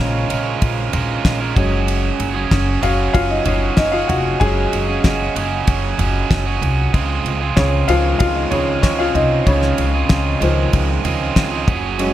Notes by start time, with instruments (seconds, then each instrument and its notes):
Already playing: upright piano C#3 G#3 C#4 D#4 F4 C5 C#5 D#5 F5, overdriven electric guitar G#3 C#4 F4 A#4
0.00 upright bass A#1
0.29 upright bass A#1, overdriven electric guitar G#3 C#4 F4 A#4, ride
0.62 upright bass A#1, kick, ride
0.93 upright bass A#1, overdriven electric guitar G#3 C#4 F4 A#4, floor tom, ride
1.25 upright bass A#1, kick, snare, ride
1.40 overdriven electric guitar G#3 C#4 F4 A#4
1.55 upright bass F#1, overdriven electric guitar F#3 C#4 F#4 G#4, upright piano F#3 G#3 C#4, kick, floor tom, ride
1.88 ride
2.20 upright bass F#1, ride
2.34 overdriven electric guitar C#4 F#4 G#4
2.51 upright bass F#1, upright piano C#4 C#5, kick, snare, ride
2.81 upright bass F#1, overdriven electric guitar F#3 C#4 F#4 G#4, upright piano F#4 F5, floor tom, ride
3.14 upright bass F#1, upright piano F4 F5, kick, ride
3.30 upright piano D#4 D#5
3.45 upright bass F#1, overdriven electric guitar F#3 C#4 F#4 G#4, upright piano C#4 C#5, floor tom, ride
3.77 upright bass F#1, upright piano D#4 D#5, kick, snare, ride
3.92 overdriven electric guitar C#4 F#4 G#4, upright piano F4 F5
4.08 upright bass F1, upright piano F#4 F#5, floor tom, ride
4.40 upright bass F#1, upright piano F#3 G#3 C#4 G#4 G#5, overdriven electric guitar F#3 C#4 F#4 G#4, kick, ride
4.73 upright bass F#1, ride
4.88 overdriven electric guitar C#4 F#4 G#4
5.04 upright bass F#1, kick, snare, ride
5.35 upright bass F#1, overdriven electric guitar F#3 C#4 F#4 G#4, ride
5.67 upright bass F#1, kick, ride
5.98 upright bass F#1, overdriven electric guitar F#3 C#4 F#4 G#4, floor tom, ride
6.31 upright bass F#1, kick, snare, ride
6.46 overdriven electric guitar C#4 F#4 G#4
6.62 upright bass C2, floor tom, ride
6.93 upright bass C#2, overdriven electric guitar C#3 G#3 C4 F4 G#4, kick, ride
7.25 upright bass C#2, ride
7.41 overdriven electric guitar C4 F4 G#4
7.56 upright bass C#2, upright piano C#3 C#5, kick, snare, ride
7.88 upright bass C#2, upright piano D#3 F3 F4 C5 F5, overdriven electric guitar G#3 C4 F4 G#4, ride
8.19 upright bass C#2, upright piano F4 F5, kick, ride
8.35 upright piano D#4 D#5
8.51 upright bass C#2, upright piano C#3 C#5, overdriven electric guitar G#3 C4 F4 G#4, floor tom, ride
8.82 upright bass C#2, upright piano C#4 C#5, kick, snare, ride
8.98 overdriven electric guitar C4 F4 G#4, upright piano F4 F5
9.14 upright bass C2, upright piano D#4 D#5, floor tom, ride
9.46 upright bass C#2, overdriven electric guitar C#3 G#3 C4 F4 G#4, upright piano C#3 C#5, kick, ride
9.62 snare
9.78 upright bass C#2, ride
9.94 overdriven electric guitar C4 F4 G#4
10.09 upright bass C#2, kick, snare, ride
10.40 upright bass C#2, upright piano D#3 F3 C5, overdriven electric guitar G#3 C4 F4 G#4, ride
10.73 upright bass C#2, kick, ride
11.04 upright bass C#2, overdriven electric guitar G#3 C4 F4 G#4, floor tom, ride
11.36 upright bass C#2, kick, snare, ride
11.52 overdriven electric guitar C4 F4 G#4
11.68 upright bass F#1, overdriven electric guitar F#3 C#4 F#4 G#4, kick, floor tom, ride
11.98 upright piano F#3 G#3 C#4, ride